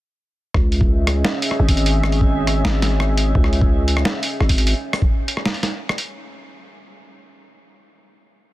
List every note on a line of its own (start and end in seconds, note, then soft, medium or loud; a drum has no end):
0.54 1.23 C#2 medium
0.54 4.76 C#4 medium
0.54 4.72 C#4 medium
0.54 4.72 G#4 medium
0.54 4.72 D#5 medium
0.54 4.72 E5 medium
0.54 kick loud
0.54 cross-stick medium
0.72 open hi-hat soft
0.81 kick loud
1.07 cross-stick medium
1.07 closed hi-hat medium
1.25 snare loud
1.42 open hi-hat medium
1.51 cross-stick medium
1.60 2.63 G#1 loud
1.69 kick medium
1.69 open hi-hat medium
1.77 closed hi-hat medium
1.86 open hi-hat medium
2.03 cross-stick medium
2.12 open hi-hat soft
2.21 kick medium
2.47 cross-stick medium
2.47 closed hi-hat medium
2.65 3.34 G#1 loud
2.65 snare loud
2.82 snare medium
2.82 closed hi-hat medium
3.00 cross-stick medium
3.17 closed hi-hat medium
3.35 4.04 C#2 medium
3.35 kick loud
3.44 cross-stick medium
3.53 open hi-hat soft
3.61 kick loud
3.88 closed hi-hat medium
3.97 cross-stick medium
4.05 snare loud
4.23 open hi-hat medium
4.40 4.74 G#1 loud
4.40 cross-stick medium
4.49 kick medium
4.49 open hi-hat medium
4.58 closed hi-hat medium
4.67 open hi-hat medium
4.93 cross-stick medium
4.93 open hi-hat soft
5.02 kick medium
5.28 closed hi-hat medium
5.37 cross-stick soft
5.46 snare loud
5.54 open hi-hat soft
5.63 snare medium
5.63 closed hi-hat medium
5.89 cross-stick medium
5.98 closed hi-hat medium